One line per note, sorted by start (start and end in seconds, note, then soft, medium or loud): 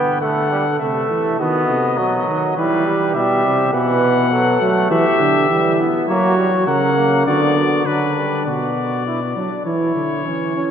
0.00 0.82 D3 medium
0.00 0.21 B3 medium
0.00 0.18 B4 medium
0.00 0.20 G5 medium
0.21 0.51 A3 medium
0.21 0.79 A4 medium
0.21 0.79 F#5 medium
0.51 0.65 G3 medium
0.79 1.10 C3 medium
0.79 1.39 A3 medium
0.79 1.42 A4 medium
0.79 1.38 E5 medium
1.10 1.39 E3 medium
1.40 1.69 D#3 medium
1.40 2.00 B3 medium
1.40 1.98 F#4 medium
1.40 2.55 D#5 medium
1.69 2.00 C3 medium
1.98 2.27 B2 medium
1.98 2.57 F#3 medium
1.98 2.56 F#4 medium
2.28 2.56 D#3 medium
2.57 3.17 E3 medium
2.57 3.14 G3 medium
2.57 2.86 E4 medium
2.57 3.14 B4 medium
2.86 3.75 G4 medium
3.15 3.46 B2 medium
3.15 3.73 G3 medium
3.15 3.72 E5 medium
3.45 3.73 C3 medium
3.73 4.60 B2 medium
3.73 4.34 E3 medium
3.73 4.31 B4 medium
3.73 4.88 F#5 medium
4.32 4.61 F#3 medium
4.32 4.89 A4 medium
4.61 4.90 F#3 medium
4.61 5.21 A3 medium
4.90 5.04 E3 medium
4.90 5.79 G4 medium
4.90 5.79 E5 medium
5.20 5.49 D3 medium
5.50 5.87 E3 medium
5.50 5.77 G3 medium
5.79 6.08 B3 medium
6.08 6.64 F#3 loud
6.08 6.37 A#3 medium
6.08 6.69 F#4 medium
6.08 6.64 C#5 medium
6.38 6.51 G3 medium
6.67 7.26 C#3 medium
6.67 6.97 F#3 medium
6.67 7.27 A#4 medium
6.67 7.25 F#5 medium
6.97 7.27 A#3 medium
7.26 7.85 D3 medium
7.26 7.86 B3 medium
7.26 7.41 F#4 medium
7.26 7.87 D5 medium
7.57 7.85 F#4 medium
7.86 8.45 D3 medium
7.86 8.16 F#3 medium
7.86 8.45 D4 medium
7.86 8.45 B4 medium
8.16 8.46 G3 medium
8.45 9.32 B2 medium
8.45 9.03 F#4 medium
8.45 9.61 D5 medium
9.06 9.20 E4 medium
9.36 9.49 F#3 medium
9.36 9.65 D4 medium
9.65 9.94 E3 medium
9.65 10.27 E4 medium
9.65 10.71 C#5 medium
9.95 10.25 D3 medium
10.25 10.71 E3 medium
10.25 10.55 C#4 medium
10.56 10.70 C#4 medium